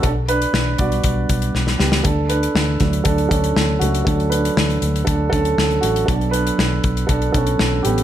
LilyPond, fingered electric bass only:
\new Staff \with { instrumentName = "Fingered electric bass" } { \clef bass \time 4/4 \key d \major \tempo 4 = 119 b,,4 b,,8 b,,8 b,,8 b,,8 b,,8 cis,8 | d,4 d,8 d,8 d,8 d,8 d,8 cis,8 | d,4 d,8 d,8 d,8 d,8 d,8 a,,8 | b,,4 b,,8 b,,8 b,,8 b,,8 b,,8 a,,8 | }